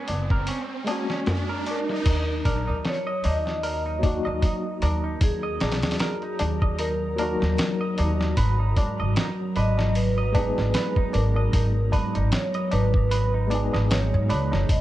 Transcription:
Already playing: G#3 A#3 C#4 F#4, riser
0.08 F#1, open hi-hat, tabla na
0.30 A#4, kick, tabla na
0.47 C#4, open hi-hat, tabla na
0.84 G#3 A#3 G#4, open hi-hat, tabla na
0.88 C#4 F#4
1.10 C#4, snare, tabla na
1.26 snare, open hi-hat, tabla na, tabla ge
1.49 A#4
1.66 C#4 A#4, open hi-hat, tabla na
1.89 snare, tabla na
2.05 D#2 F#3 D#4 A#5, kick, open hi-hat, crash, tabla na
2.45 A#1 A#4, kick, open hi-hat, tabla na
2.67 D#2 D#4, tabla na
2.85 C#5, snare, open hi-hat, tabla na
3.07 D#5
3.24 D#2 D#4 D#5, open hi-hat, tabla na
3.46 snare, tabla na
3.63 A#4, open hi-hat, tabla na
3.86 D#4
3.99 F#3 A#3
4.03 D#4 F#4, kick, open hi-hat, tabla na
4.25 D#2 D#5, tabla na
4.42 D#4, kick, open hi-hat, tabla na
4.82 D#2 A#4, open hi-hat, tabla na
5.04 D#4, tabla na
5.21 D#2 G#4, kick, open hi-hat, tabla na
5.43 D#5
5.61 A#1 D#4, snare, open hi-hat, tabla na
5.72 snare, open hi-hat
5.83 D#2, snare, open hi-hat, tabla na
5.91 snare, open hi-hat
6.00 A#4, snare, open hi-hat, tabla na
6.22 D#4, closed hi-hat
6.39 D#2, open hi-hat, tabla na
6.62 D#5, kick, tabla na
6.79 D#4 A#4, open hi-hat, tabla na
7.16 F#3 A#3 A#4, open hi-hat, tabla na
7.20 D#4 F#4
7.40 D#2 D#4, snare, tabla na
7.58 snare, open hi-hat, tabla na
7.81 D#5
7.98 D#2 D#4, open hi-hat, tabla na
8.20 snare, tabla na
8.37 G#1 B4, kick, open hi-hat, tabla na
8.60 D#4
8.76 G#2, kick, open hi-hat, tabla na
8.99 G#1 D#5, tabla na
9.16 D#4, snare, open hi-hat
9.56 G#1 B4 D#5, open hi-hat, tabla na
9.78 D#4, snare, tabla na
9.95 B4, open hi-hat, tabla na
10.18 D#5
10.32 G#3 B3 D#4 B4, kick, open hi-hat, tabla na
10.37 D#4 G#4
10.56 G#1, snare, tabla na
10.74 B4, snare, open hi-hat, tabla na
10.97 D#4, kick
11.13 G#1 A#4, open hi-hat, tabla na
11.36 D#5, tabla na
11.53 G#1 D#4, kick, open hi-hat, tabla na
11.92 G#2 B4, kick, open hi-hat, tabla na
12.15 G#1 D#4, closed hi-hat, tabla na
12.32 C#5, snare, open hi-hat
12.54 D#5, closed hi-hat
12.71 G#1 D#4 B4, open hi-hat, tabla na
12.94 kick, tabla na
13.11 B4, open hi-hat, tabla na
13.34 D#4
13.47 G#3 B3, open hi-hat, tabla na
13.52 D#4 G#4
13.73 G#1 D#5, snare, tabla na
13.90 D#4 C#5, snare, open hi-hat, tabla na
14.14 G#2
14.29 C#2 B4, open hi-hat, tabla na
14.52 F#1 D#4, snare, tabla na
14.69 E1 G#3 D#5 A#5, kick, open hi-hat, tabla na

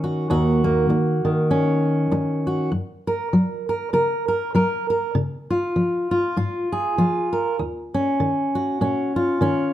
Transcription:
Already playing: D#3 A#3 C#4
0.04 F#4
0.30 D#2 F#4
0.64 A#3
0.89 muted steel-string acoustic guitar stroke
1.25 D#3
1.51 C#4
2.12 muted steel-string acoustic guitar stroke
2.47 F#4
2.72 F#2
3.07 A#4
3.33 F#3
3.69 A#4
3.93 C#3 A#4
4.28 A#4
4.55 F#3 A#4
4.90 A#4
5.15 C#3
5.50 F4
5.76 F3
6.11 F4
6.37 G#2 F4
6.72 G#4
6.98 F3 F4
7.33 A#4
7.59 D#2
7.94 C#4
8.20 D#3
8.55 F#4
8.81 A#2 C#4
9.16 F4
9.41 D#3 C#4

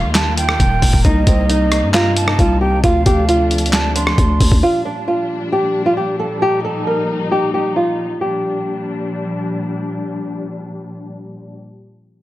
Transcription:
Already playing: D#3 G3 A#3 F4 F5
0.04 D#2
0.15 A5, snare, clap, closed hi-hat
0.38 G5, closed hi-hat
0.49 cross-stick
0.60 D#1, kick, closed hi-hat
0.82 D#1, kick, open hi-hat
0.93 D#1, kick
1.05 C2 C3 D#4 D#5, kick, closed hi-hat
1.27 C2 C4, kick, closed hi-hat
1.50 D#4, closed hi-hat
1.72 cross-stick, closed hi-hat
1.83 G2
1.94 F4 A#5, snare, clap, closed hi-hat
2.17 A5, closed hi-hat
2.27 D#4, cross-stick
2.39 C2 F4, kick, closed hi-hat
2.61 G4 G5
2.84 D2 F3 A3 D4 F4 F5, kick, closed hi-hat
3.06 D2 G4, kick, closed hi-hat
3.29 F4, closed hi-hat
3.51 closed hi-hat
3.58 closed hi-hat
3.66 closed hi-hat
3.73 A5, snare, clap, closed hi-hat
3.96 D4 C6, closed hi-hat
4.07 cross-stick
4.18 D2, kick, closed hi-hat
4.40 D2, kick, open hi-hat
4.52 D2, kick
4.63 A#2 F3 G3 D4 F4
4.85 D4
5.08 F4
5.52 G4
5.86 F4
5.97 G4
6.20 A4
6.42 D#4 G4
6.65 A4
6.87 A#4
7.32 G4
7.54 G4
7.76 F4
8.21 A#2 F3 G3 D4 G4

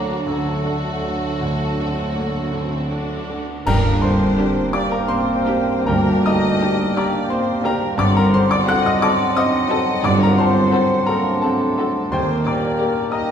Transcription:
Already playing: D2 D3 F#3 A3 A#3 D4 F#4 A#4 A#5
0.25 D2 D3 F#3 A3 D4 F#4 A4 A5
0.65 A3 D4 F#4
1.02 A3 D4 F#4
1.40 D2 D3 A3
1.79 A3 C4 D4 F#4
2.15 A3 A#3 D4 F#4
2.52 D2 D3 C4
2.90 A3 D4 F#4
3.30 A3 D4 F#4
3.66 G1 G2 G3 A#3 D4 A#4 G5 A#5, concert bass drum, crash
4.02 D3 C4 C5 C6
4.38 A#3 D4 G4
4.73 A#3 D4 G4 D5 D6
4.90 A#3 A#4 A#5
5.07 A#3 C4 C5 C6
5.47 A#3 D4 G4
5.86 D2 G2 A#3 D4 A#4 G5 A#5
6.25 D3 D#4 D#5 A#5 D#6
6.61 A#3 D4 G4
6.96 A#3 D4 G4 D5 A#5 D6
7.30 A#3 C4 C5 C6
7.63 A#3 D4 G4 A#4 A#5
7.67 A#4
7.97 G1 G2 F#3 C4 D4 C5 D5 F#5 D6
8.01 D5
8.14 A#3 A#4 A#5
8.19 A#4
8.32 D3 C4 C5 C6
8.48 D4 D5 D6
8.65 C4 F#4 A4 F#5 F#6
8.69 F#5
8.83 D#4 D#5 D#6
9.00 D4 F#4 A4 D5 A5 D6
9.04 D5
9.34 C4 D#4 D#5 D#6
9.70 C4 F#4 A4
10.03 G1 G2 D4 D5 D6
10.20 A#3 A#4 A#5
10.24 A#4
10.36 D3 C4 C5 C6
10.40 A5
10.72 C4 F#4 A4
11.06 A#3 D4 F#4 A4 A#4 A#5
11.42 A3 C4 A4 F#5 A5
11.78 C4 F#4 A4
12.12 D#2 G3 A#3 C4 G4 A#4 C5 G5 C6
12.45 A#2 D4 D5 A#5 D6
12.78 A#3 G4 A#4
13.10 D#4 G4 A#4 D#5 G5 A#5 D#6

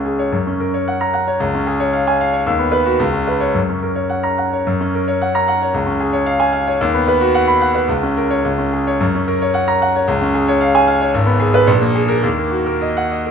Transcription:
Already playing: C#2 C#4
0.05 G#4
0.19 C#5
0.32 F#2
0.47 C#4
0.60 A#4
0.74 C#5
0.88 F#5
1.01 A#5
1.14 F#5
1.27 C#5
1.40 C#2
1.54 C#4
1.67 G#4
1.80 C#5
1.93 F5
2.07 G#5
2.21 F5
2.33 C#5
2.46 D#2
2.59 B3
2.72 B4
2.86 F#4
2.99 C#2
3.13 C#4
3.27 B4
3.40 C#5
3.54 F#2
3.69 C#4
3.82 A#4
3.95 C#5
4.10 F#5
4.23 A#5
4.38 F#5
4.53 C#5
4.67 F#2
4.80 C#4
4.94 A#4
5.08 C#5
5.22 F#5
5.35 A#5
5.48 F#5
5.62 C#5
5.74 C#2
5.86 C#4
6.00 G#4
6.13 C#5
6.26 F5
6.40 G#5
6.53 F5
6.67 C#5
6.81 D#2
6.94 B3
7.08 B4
7.21 F#4
7.35 F#5
7.48 B5
7.61 F#5
7.75 B4
7.88 C#2
8.03 C#4
8.17 A#4
8.30 C#5
8.44 C#2
8.58 C#4
8.73 G#4
8.87 C#5
9.00 F#2
9.15 C#4
9.28 A#4
9.42 C#5
9.54 F#5
9.68 A#5
9.82 F#5
9.96 C#5
10.08 C#2
10.21 C#4
10.34 G#4
10.48 C#5
10.61 F5
10.75 G#5
10.88 F5
11.01 C#5
11.14 G#1
11.26 B3
11.40 G#4
11.54 B4
11.67 A#1
11.81 A#3
11.95 G#4
12.09 A#4
12.23 D#2
12.38 A#3
12.51 F#4
12.66 A#4
12.81 D#5
12.97 F#5
13.11 D#5
13.25 A#4

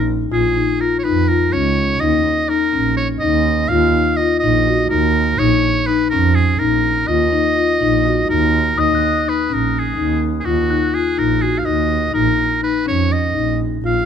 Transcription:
Already playing: A#1 D#4
0.31 A#1 F4 G#4
0.56 D#4
0.80 F4 A#4
0.99 C#5
1.03 F2 D#4 B4
1.28 F4 A#4
1.53 C#2 C#4 C#5
2.00 D#2 D#4 D#5
2.49 D#4 A#4
2.73 A#1 C#4
2.97 C#5
3.20 D#2 D#4 D#5
3.68 D#2 F4 F5
3.95 D#4
4.17 F4 D#5
4.39 D#5
4.43 A#1 D#4
4.67 F#4
4.90 D#2 D#4 A#4
5.39 A#1 D#4 C#5
5.86 D#4 B4
6.10 F2 C#4 A#4
6.35 G#4
6.59 A#1 D#4 A#4
7.07 D#2 F4 D#5
7.32 D#4
7.56 F4
7.82 A#1 D#4
8.05 F#4
8.29 D#2 D#4 A#4
8.78 D#2 D#4 D#5 D#6
8.95 F#6
9.26 D#4 B4
9.50 A#1 C#4 A#4
9.78 G#4
9.97 D#2 D#4
10.40 G#4
10.45 D#2 F4 F#4
10.70 D#4 F#6
10.94 F4 G#4
11.18 A#1 D#4 A#4
11.41 F#4 G#4
11.58 F5
11.65 D#2 D#4 D#5
12.14 A#1 D#4 A#4
12.62 D#4 B4
12.86 F2 C#4 C#5
13.12 D#5
13.34 A#1 D#4
13.83 A#1 F4 F5

